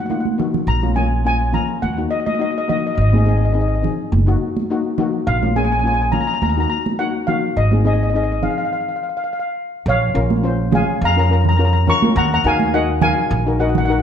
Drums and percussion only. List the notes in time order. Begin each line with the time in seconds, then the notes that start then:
0.10 high conga
0.25 high conga
0.40 low conga
0.54 low conga
0.83 high conga
0.97 high conga
1.54 low conga
1.83 high conga
2.27 high conga
2.69 low conga
3.13 high conga
3.26 high conga
3.84 low conga
4.12 high conga
4.57 high conga
4.98 low conga
5.43 high conga
5.56 high conga
6.13 low conga
6.42 high conga
6.86 high conga
7.28 low conga
7.72 high conga
7.85 high conga
8.43 low conga
10.30 high conga
10.72 high conga, low conga
11.45 low conga
11.87 low conga
12.02 high conga
12.60 high conga
13.01 low conga
13.75 low conga